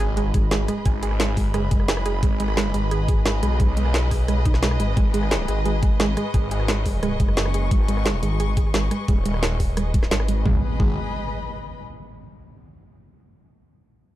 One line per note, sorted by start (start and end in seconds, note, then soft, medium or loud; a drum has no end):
0.00 0.50 G#1 loud
0.00 0.10 G#4 medium
0.00 10.44 G#4 medium
0.00 10.46 B4 medium
0.00 10.46 D#5 medium
0.00 6.23 B5 medium
0.00 sub drop medium
0.17 0.23 G#3 medium
0.17 closed hi-hat medium
0.34 0.40 G#3 medium
0.34 kick loud
0.34 closed hi-hat medium
0.51 0.67 G#1 loud
0.51 0.57 G#3 loud
0.51 snare loud
0.51 closed hi-hat medium
0.68 0.79 G#3 medium
0.68 cross-stick soft
0.68 closed hi-hat loud
0.85 1.46 G#1 loud
0.85 0.92 G#4 medium
0.85 kick loud
0.85 closed hi-hat medium
1.03 1.13 G#4 medium
1.03 closed hi-hat loud
1.11 cross-stick soft
1.20 1.26 G#3 medium
1.20 snare loud
1.20 closed hi-hat medium
1.37 1.43 G#3 medium
1.37 kick medium
1.37 open hi-hat medium
1.46 1.70 G1 loud
1.54 1.60 G#3 loud
1.54 cross-stick medium
1.54 closed hi-hat medium
1.71 2.21 F#1 loud
1.71 1.82 G#3 medium
1.71 kick loud
1.71 closed hi-hat medium
1.80 cross-stick soft
1.88 1.95 G#4 medium
1.88 snare loud
1.88 closed hi-hat medium
1.97 cross-stick medium
2.06 2.16 G#4 medium
2.06 closed hi-hat loud
2.23 2.39 G#1 loud
2.23 2.29 G#3 medium
2.23 kick loud
2.23 closed hi-hat medium
2.40 2.73 G#1 medium
2.40 2.46 G#3 medium
2.40 closed hi-hat medium
2.49 cross-stick soft
2.57 2.63 G#3 loud
2.57 snare loud
2.57 closed hi-hat medium
2.74 3.24 G#1 loud
2.74 2.84 G#3 medium
2.74 closed hi-hat medium
2.91 2.97 G#4 medium
2.91 closed hi-hat medium
3.08 3.19 G#4 medium
3.08 kick loud
3.08 closed hi-hat medium
3.26 3.41 G#1 loud
3.26 3.32 G#3 medium
3.26 snare loud
3.26 closed hi-hat medium
3.43 4.79 B1 loud
3.43 3.49 G#3 medium
3.43 cross-stick soft
3.43 closed hi-hat medium
3.60 3.66 G#3 loud
3.60 kick loud
3.60 closed hi-hat medium
3.77 3.87 G#3 medium
3.77 closed hi-hat medium
3.86 cross-stick soft
3.94 4.00 G#4 medium
3.94 snare loud
3.94 closed hi-hat medium
4.11 4.22 G#4 medium
4.11 kick medium
4.11 open hi-hat medium
4.28 4.35 G#3 medium
4.28 cross-stick medium
4.28 closed hi-hat medium
4.46 4.52 D#4 loud
4.46 kick loud
4.46 closed hi-hat medium
4.54 cross-stick soft
4.54 snare soft
4.63 4.73 G#3 medium
4.63 snare loud
4.63 closed hi-hat medium
4.71 cross-stick medium
4.80 4.96 G#1 loud
4.80 4.86 G#3 medium
4.80 closed hi-hat medium
4.97 5.13 G#1 loud
4.97 5.03 G#3 loud
4.97 kick loud
4.97 closed hi-hat medium
5.14 5.47 G#1 loud
5.14 5.24 G#3 medium
5.14 closed hi-hat medium
5.23 cross-stick soft
5.31 5.37 G#4 medium
5.31 snare loud
5.31 closed hi-hat medium
5.48 5.98 G#1 loud
5.48 5.59 G#4 medium
5.48 closed hi-hat medium
5.66 5.72 G#3 medium
5.66 closed hi-hat medium
5.83 5.89 G#3 medium
5.83 kick loud
5.83 closed hi-hat medium
6.00 6.16 G#1 loud
6.00 6.06 G#3 loud
6.00 snare loud
6.00 closed hi-hat medium
6.13 10.46 C#6 medium
6.17 6.27 G#3 medium
6.17 cross-stick soft
6.17 closed hi-hat medium
6.34 7.19 G#1 loud
6.34 6.40 G#4 medium
6.34 kick loud
6.34 closed hi-hat medium
6.51 6.62 G#4 medium
6.51 closed hi-hat loud
6.60 cross-stick soft
6.68 6.75 G#3 medium
6.68 snare loud
6.68 closed hi-hat medium
6.86 6.92 G#3 medium
6.86 kick medium
6.86 open hi-hat medium
7.03 7.09 G#3 loud
7.03 cross-stick medium
7.03 closed hi-hat medium
7.20 7.70 F#1 loud
7.20 7.30 G#3 medium
7.20 kick loud
7.20 closed hi-hat medium
7.28 cross-stick soft
7.37 7.43 G#4 medium
7.37 snare loud
7.37 closed hi-hat medium
7.46 cross-stick medium
7.54 7.64 G#4 medium
7.54 closed hi-hat loud
7.71 7.87 G#1 loud
7.71 7.78 G#3 medium
7.71 kick loud
7.71 closed hi-hat medium
7.88 8.21 G#1 loud
7.88 7.95 G#3 medium
7.88 closed hi-hat loud
7.97 cross-stick soft
8.06 8.12 G#3 loud
8.06 snare loud
8.06 closed hi-hat medium
8.23 8.73 G#1 medium
8.23 8.33 G#3 medium
8.23 closed hi-hat loud
8.40 8.46 G#4 medium
8.40 closed hi-hat medium
8.57 8.67 G#4 medium
8.57 kick loud
8.57 closed hi-hat medium
8.74 8.90 G#1 loud
8.74 8.80 G#3 medium
8.74 snare loud
8.74 closed hi-hat medium
8.91 8.97 G#3 medium
8.91 cross-stick soft
8.91 closed hi-hat loud
9.08 9.58 D#1 loud
9.08 9.15 G#3 loud
9.08 kick loud
9.08 closed hi-hat medium
9.26 9.36 G#3 medium
9.26 closed hi-hat medium
9.34 cross-stick soft
9.43 9.49 G#4 medium
9.43 snare loud
9.43 closed hi-hat medium
9.60 10.10 D#1 loud
9.60 9.70 G#4 medium
9.60 kick medium
9.60 open hi-hat medium
9.77 9.83 G#3 medium
9.77 cross-stick medium
9.77 closed hi-hat medium
9.94 10.04 G#3 medium
9.94 kick loud
9.94 closed hi-hat medium
10.03 cross-stick soft
10.03 snare soft
10.11 10.44 G#1 loud
10.11 10.17 G#3 medium
10.11 snare loud
10.11 closed hi-hat medium
10.20 cross-stick medium
10.28 10.35 G#3 medium
10.28 closed hi-hat loud
10.46 10.55 G#1 loud
10.46 10.55 G#3 loud
10.46 11.79 G#4 medium
10.46 kick loud
10.46 impact medium
10.51 11.79 B4 medium
10.56 11.79 D#5 medium
10.61 11.79 B5 medium
10.80 10.96 G#1 loud
10.80 10.96 G#3 loud
10.80 kick loud